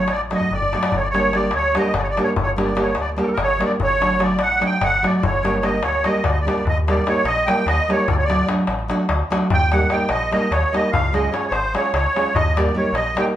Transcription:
Already playing: G1 C#5
0.08 A1 D5, darbuka tek
0.19 darbuka tek
0.30 F#3 A3 D4 F#4, darbuka tek
0.35 D#5
0.41 darbuka dum
0.51 G1 D5, darbuka dum
0.62 darbuka dum
0.73 F#3 A3 D4 F#4, darbuka tek
0.83 darbuka tek
0.92 G1 C#5, darbuka dum
1.02 D5, darbuka tek
1.10 G3 A#3 C#5
1.15 D4 G4, darbuka tek
1.33 G3 A#3 D4 G4 D5, darbuka tek
1.51 D2, darbuka tek
1.55 C#5
1.63 darbuka tek
1.75 G3 A#3 D4 G4 D#5, darbuka tek
1.85 darbuka tek
1.94 G1 D5, darbuka tek, darbuka dum
2.02 C#5, darbuka tek
2.10 D5
2.17 G3 A#3 D4 G4, darbuka tek
2.23 C#5
2.36 G1, darbuka dum
2.42 C#5
2.47 darbuka tek
2.56 G3 A#3 D4 G4, darbuka tek
2.63 D5
2.75 G3 A#3 D4 G4, darbuka tek
2.81 C#5
2.95 D2, darbuka tek
3.01 D5
3.07 darbuka tek
3.16 G3 A#3 D4 G4, darbuka tek
3.23 A4 A#4
3.27 darbuka tek
3.33 A#4
3.38 G1, darbuka tek, darbuka dum
3.43 C#5
3.48 darbuka tek
3.59 G3 A#3 D4 G4, darbuka tek
3.64 D5
3.80 G1 C#5, darbuka dum
3.90 darbuka tek
4.00 F#3 A3 D4 F#4, darbuka tek
4.19 F#3 A3 D4 F#4, darbuka tek
4.23 D5
4.39 A1 F#5, darbuka tek
4.50 darbuka tek
4.60 F#3 A3 D4 F#4, darbuka tek
4.65 G5
4.72 darbuka tek
4.81 G1 F#5, darbuka tek, darbuka dum
4.93 darbuka tek
5.02 F#3 A3 D4 F#4 D5, darbuka tek
5.17 D5
5.23 G1 C#5, darbuka dum
5.43 G3 A#3 D4 G4, darbuka tek
5.62 G3 A#3 D4 G4 D#5, darbuka tek
5.73 darbuka tek
5.82 D2 C#5, darbuka tek
6.04 G3 A#3 D4 G4 D#5, darbuka tek
6.24 D2 D5, darbuka tek, darbuka dum
6.31 D#5
6.37 darbuka tek
6.41 D5
6.45 G3 A#3 D4 G4, darbuka tek
6.58 darbuka tek
6.65 D#2 D#5, darbuka dum
6.87 G3 A#3 D#4 G4 D5, darbuka tek
6.97 darbuka tek
7.06 G3 A#3 D#4 G4 C#5, darbuka tek
7.25 A#1 D#5, darbuka tek
7.37 darbuka tek
7.46 G3 A#3 D#4 G4 G5, darbuka tek
7.58 darbuka tek
7.66 D#2 D#5, darbuka tek
7.88 G3 A#3 D#4 G4 C#5, darbuka tek
8.08 D2 D5, darbuka dum
8.18 C#5
8.24 D5
8.28 F#3 A3 D4 F#4, darbuka tek
8.39 darbuka tek
8.48 F#3 A3 D4 F#4, darbuka tek
8.67 A1, darbuka tek
8.79 darbuka tek
8.88 F#3 A3 D4 F#4, darbuka tek
9.00 darbuka tek
9.09 D2, darbuka tek
9.30 F#3 A3 D4 F#4, darbuka tek
9.50 D#2 G5, darbuka dum
9.72 G3 A#3 D#4 G4 F#5, darbuka tek
9.81 darbuka tek
9.90 G3 A#3 D#4 G4 G5, darbuka tek
10.09 A#1 D#5, darbuka tek
10.31 G3 A#3 D#4 G4 D#5, darbuka tek
10.42 darbuka tek
10.51 D#2 C#5, darbuka tek
10.72 G3 A#3 D#4 G4 D#5, darbuka tek
10.91 C#2 F5, darbuka dum
11.13 G#3 C#4 F4 G#4 D#5, darbuka tek
11.24 darbuka tek
11.32 G#3 C#4 F4 G#4 C#5, darbuka tek
11.44 darbuka tek
11.48 G#1 C5 C#5
11.52 darbuka tek
11.64 darbuka tek
11.74 G#3 C#4 F4 G#4 C#5, darbuka tek
11.84 darbuka tek
11.94 C#2 C#5, darbuka tek
12.05 darbuka tek
12.16 G#3 C#4 F4 G#4, darbuka tek
12.27 darbuka tek
12.35 D#2 D#5, darbuka dum
12.56 G3 A#3 D#4 G4 D5, darbuka tek
12.67 darbuka tek
12.74 G3 A#3 D#4 G4 C#5
12.93 A#1 D#5, darbuka tek
13.07 darbuka tek
13.15 G3 A#3 D#4 G4 G5, darbuka tek
13.27 darbuka tek

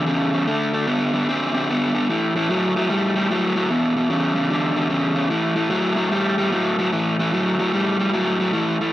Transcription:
0.06 E2 C#3
0.33 E2 C#3
0.47 D3 A3
0.73 D3 A3
0.87 D3 B3
1.13 D3 B3
1.29 D3 C4
1.54 D3 C4
1.69 D3 B3
1.95 D3 B3
2.10 A2 E3
2.36 A2 E3
2.50 A2 F#3
2.76 A2 F#3
2.89 A2 G3
3.16 A2 G3
3.31 A2 F#3
3.56 A2 F#3
3.70 E2 B2
3.97 E2 B2
4.10 E2 C#3
4.35 E2 C#3
4.50 E2 D3
4.75 E2 D3
4.90 E2 C#3
5.15 E2 C#3
5.30 A2 E3
5.56 A2 E3
5.70 A2 F#3
5.96 A2 F#3
6.11 A2 G3
6.38 A2 G3
6.52 A2 F#3
6.79 A2 F#3
6.92 A2 E3
7.19 A2 E3
7.33 A2 F#3
7.59 A2 F#3
7.73 A2 G3
8.00 A2 G3
8.13 A2 F#3
8.40 A2 F#3
8.53 A2 E3
8.81 A2 E3

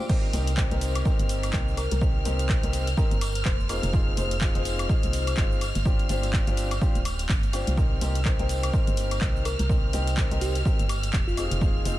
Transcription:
Already playing: D6
0.09 C4 D#4 G4 A#4 C5 F6, kick, tambourine, crash, cabasa
0.33 C2 C4 D#4 G4 A#4 C5, open hi-hat, tambourine, high conga, cabasa
0.47 closed hi-hat, tambourine, cabasa
0.57 C4 D#4 G4 A#4 C5, kick, clap, cabasa
0.71 C2 C4 D#4 G4 A#4 C5, closed hi-hat, high conga
0.81 open hi-hat, tambourine, cabasa
0.95 closed hi-hat, tambourine, cabasa, high woodblock
1.05 C4 D#4 G4 A#4 C5, kick, tambourine, cabasa
1.19 G1, closed hi-hat, high conga, cabasa
1.29 open hi-hat, tambourine, cabasa
1.43 closed hi-hat, tambourine, cabasa, high woodblock
1.53 C2 C4 D#4 G4 A#4 C5, kick, clap, tambourine, high conga, cabasa
1.68 cabasa
1.77 A#4, open hi-hat, tambourine, cabasa, high woodblock
1.91 C2 A#4, closed hi-hat, tambourine, high conga, cabasa
2.01 C4 D#4 G4 A#4 C5, kick, tambourine, cabasa
2.25 C2 C4 D#4 G4 A#4 C5, open hi-hat, tambourine, high conga, cabasa
2.39 closed hi-hat, tambourine, cabasa
2.49 C4 G4 C5, kick, clap, tambourine, cabasa
2.63 C2 C4 D#4 G4 A#4 C5, closed hi-hat, high conga
2.73 open hi-hat, tambourine, cabasa
2.87 closed hi-hat, tambourine, cabasa
2.97 C4 D#4 G4 A#4 C5, kick, tambourine, cabasa
3.11 G1, closed hi-hat, high conga, cabasa
3.21 open hi-hat, tambourine, cabasa, high woodblock
3.35 closed hi-hat, tambourine, cabasa
3.45 F1 C5, kick, clap, tambourine, high conga, cabasa
3.60 cabasa
3.69 C4 D#4 F4 G#4 A#4 C5, open hi-hat, tambourine, cabasa, high woodblock
3.83 F1 A#4, closed hi-hat, tambourine, high conga, cabasa
3.93 C4 D#4 F4 G#4 C5, kick, tambourine, cabasa
4.17 F1 C4 D#4 F4 G#4 C5, open hi-hat, tambourine, high conga, cabasa
4.31 closed hi-hat, tambourine, cabasa
4.41 C4 D#4 F4 G#4 C5, kick, clap, cabasa
4.55 F1 C4 D#4 F4 G#4 C5, closed hi-hat, high conga
4.65 open hi-hat, tambourine, cabasa
4.79 closed hi-hat, tambourine, cabasa, high woodblock
4.89 C4 D#4 F4 G#4 C5, kick, tambourine, cabasa
5.03 C2, closed hi-hat, high conga, cabasa
5.13 open hi-hat, tambourine, cabasa
5.27 closed hi-hat, tambourine, cabasa, high woodblock
5.37 G1 C4 D#4 F4 G#4 C5, kick, clap, tambourine, high conga, cabasa
5.52 cabasa
5.61 open hi-hat, tambourine, cabasa, high woodblock
5.75 G1, closed hi-hat, tambourine, high conga, cabasa
5.85 C4 D4 F4 G4 C5, kick, tambourine, cabasa
5.99 closed hi-hat
6.09 G1 C4 D4 F4 G4 C5, open hi-hat, tambourine, high conga, cabasa
6.23 closed hi-hat, tambourine, cabasa
6.33 C4 D4 G4, kick, clap, tambourine, cabasa
6.47 G1 C4 D4 F4 G4 C5, closed hi-hat, high conga, cabasa
6.57 open hi-hat, tambourine, cabasa
6.71 closed hi-hat, tambourine, cabasa, high woodblock
6.81 C4 D4 F4 G4 C5, kick, tambourine, cabasa
6.95 D1, closed hi-hat, high conga, cabasa
7.05 open hi-hat, tambourine, cabasa, high woodblock
7.19 closed hi-hat, tambourine, cabasa
7.29 G1, kick, clap, tambourine, high conga, cabasa
7.43 closed hi-hat, cabasa
7.53 C4 D4 F4 G4 C5, open hi-hat, tambourine, cabasa, high woodblock
7.67 C2, closed hi-hat, tambourine, high conga, cabasa
7.77 C4 D#4 G4 A#4 C5 F6, kick, tambourine, cabasa
8.01 C2 C4 D#4 G4 A#4 C5, open hi-hat, tambourine, high conga, cabasa
8.15 closed hi-hat, tambourine, cabasa
8.25 C4 D#4 G4 A#4 C5, kick, clap, tambourine, cabasa
8.39 C2 C4 D#4 G4 A#4 C5, closed hi-hat, high conga
8.49 open hi-hat, tambourine, cabasa
8.63 closed hi-hat, tambourine, cabasa, high woodblock
8.73 C4 D#4 G4 A#4 C5, kick, tambourine, cabasa
8.87 G1, closed hi-hat, high conga, cabasa
8.97 open hi-hat, tambourine, cabasa
9.11 closed hi-hat, tambourine, cabasa, high woodblock
9.21 C2 C4 D#4 G4 A#4 C5, kick, clap, tambourine, high conga, cabasa
9.36 cabasa
9.45 A#4, open hi-hat, tambourine, cabasa, high woodblock
9.59 C2 A#4, closed hi-hat, tambourine, high conga, cabasa
9.69 C4 D#4 G4 A#4 C5, kick, tambourine, cabasa
9.93 C2 C4 D#4 G4 A#4 C5, open hi-hat, tambourine, high conga, cabasa
10.07 closed hi-hat, tambourine, cabasa
10.17 C4 D#4 G4 A#4 C5, kick, clap, tambourine, cabasa
10.31 C2 C4 D#4 G4 A#4 C5, closed hi-hat, high conga
10.41 G4, open hi-hat, tambourine, cabasa
10.55 closed hi-hat, tambourine, cabasa
10.65 C4 D#4 G4 A#4 C5, kick, tambourine, cabasa
10.79 G1, closed hi-hat, high conga, cabasa
10.89 open hi-hat, tambourine, cabasa, high woodblock
11.03 closed hi-hat, tambourine, cabasa
11.13 F1, kick, clap, tambourine, high conga, cabasa
11.27 F4, cabasa
11.37 C4 D#4 F4 G#4 C5, open hi-hat, tambourine, cabasa, high woodblock
11.51 F1, closed hi-hat, tambourine, high conga, cabasa
11.61 C4 D#4 F4 G#4 C5, kick, tambourine, cabasa
11.85 F1 C4 D#4 F4 G#4 C5, open hi-hat, tambourine, high conga, cabasa

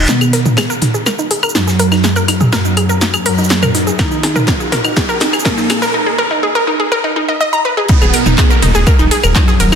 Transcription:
Already playing: D#3
0.08 B2 B3 D#4, snare, closed hi-hat, riser, shaker
0.21 D#1 G#4, claves, shaker
0.33 A#4, snare, closed hi-hat, open hi-hat
0.45 D#1 D#4, mid tom, shaker
0.57 G#4, snare, closed hi-hat, claves, shaker
0.70 A#4, shaker
0.82 D#1 D#4, snare, closed hi-hat, mid tom, open hi-hat
0.94 D#1 G#4, shaker
1.06 A#4, snare, closed hi-hat, claves, shaker
1.19 D#1 D#4, shaker
1.31 G#4, closed hi-hat, open hi-hat, shaker
1.43 D#1 A#4, claves, shaker
1.49 shaker
1.55 F#2 F#3 D#4, snare, closed hi-hat, shaker
1.67 G#4, snare, shaker
1.79 D#1 A#4, closed hi-hat, open hi-hat, shaker
1.92 D#4, snare, claves, shaker
2.04 G#4, snare, closed hi-hat, shaker
2.16 D#1 A#4, closed hi-hat, shaker
2.28 D#4, snare, closed hi-hat, open hi-hat, claves
2.41 D#1 G#4, mid tom, shaker
2.52 F#2 F#3 A#4, snare, closed hi-hat, shaker
2.65 D#4, shaker
2.77 D#1 G#4, closed hi-hat, open hi-hat, claves
2.89 D#1 A#4, shaker
3.01 D#4, snare, closed hi-hat, shaker
3.14 D#1 G#4, claves, shaker
3.26 F#2 F#3 A#4, open hi-hat, shaker
3.38 D#1 D#4, shaker
3.44 shaker
3.49 G#4, snare, closed hi-hat, shaker
3.63 A#4, mid tom, claves, shaker
3.75 D#1 D#4, snare, closed hi-hat, open hi-hat, shaker
3.87 D#1 G#4, shaker
3.99 D#3 D#4 A#4, kick, snare, closed hi-hat, claves, shaker
4.11 D#1 D#4, shaker
4.23 G#4, snare, closed hi-hat, open hi-hat
4.36 A#4, mid tom, shaker
4.47 D#4, kick, snare, closed hi-hat, claves, shaker
4.60 G#4, shaker
4.72 D#1 A#4, snare, closed hi-hat, mid tom, open hi-hat
4.84 D#1 D#4, claves, shaker
4.96 G#4, kick, snare, closed hi-hat, shaker
5.09 A#4, shaker
5.20 D#4, snare, closed hi-hat, open hi-hat, shaker
5.33 D#1 G#4, claves, shaker
5.39 shaker
5.45 A#2 A#3 A#4, kick, snare, closed hi-hat
5.57 D#4, snare, shaker
5.70 G#4, snare, closed hi-hat, open hi-hat, claves, shaker
5.82 A#4, snare, shaker
5.94 D#4
6.06 G#4
6.18 A#4
6.31 D#4
6.43 G#4
6.55 A#4
6.67 D#4
6.80 G#4
6.92 A#4
7.04 D#4
7.16 D#4
7.28 D#5
7.41 D#5
7.53 A#5
7.65 B4
7.77 G#4
7.88 B2 B3 D#4, kick, closed hi-hat, ride, downlifter, shaker
8.02 D#1 G#4, claves, shaker
8.13 A#4, snare, closed hi-hat, open hi-hat, ride, shaker
8.26 D#1 D#4, mid tom, shaker
8.38 G#4, kick, snare, clap, closed hi-hat, ride, claves, shaker
8.50 A#4, shaker
8.62 D#1 D#4, snare, closed hi-hat, mid tom, open hi-hat, ride, shaker
8.75 D#1 G#4, shaker
8.87 A#4, kick, closed hi-hat, ride, claves, shaker
8.99 D#1 D#4, shaker
9.11 G#4, closed hi-hat, open hi-hat, ride
9.23 D#1 A#4, claves, shaker
9.35 F#2 F#3 D#4, kick, snare, clap, closed hi-hat, ride, shaker
9.48 G#4, snare, shaker
9.60 D#1 A#4, closed hi-hat, open hi-hat, ride, shaker
9.72 D#4, snare, claves, shaker

